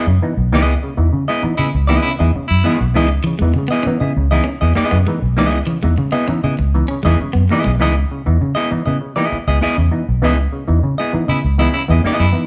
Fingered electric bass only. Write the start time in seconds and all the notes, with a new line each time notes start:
0.07 F#2
0.37 B1
0.52 C#2
0.98 E2
1.13 C#3
1.44 muted fingered electric bass stroke
1.59 C#3
1.75 C#2
2.20 E2
2.35 muted fingered electric bass stroke
2.51 F#2
2.81 B1
2.96 C#2
3.41 E2
3.56 C#3
3.86 muted fingered electric bass stroke
4.01 C#3
4.17 C#2
4.62 E2
4.77 muted fingered electric bass stroke
4.92 F#2
5.22 B1
5.38 C#2
5.84 E2
5.98 C#3
6.28 muted fingered electric bass stroke
6.44 C#3
6.59 C#2
7.05 E2
7.20 muted fingered electric bass stroke
7.35 F#2
7.66 B1
7.82 C#2
8.27 E2
8.42 C#3
8.72 muted fingered electric bass stroke
8.87 C#3
9.32 muted fingered electric bass stroke
9.48 C#2
9.78 E2
10.09 B1
10.24 C#2
10.69 E2
10.84 C#3
11.14 muted fingered electric bass stroke
11.29 C#3
11.44 C#2
11.89 E2
12.05 muted fingered electric bass stroke
12.20 F#2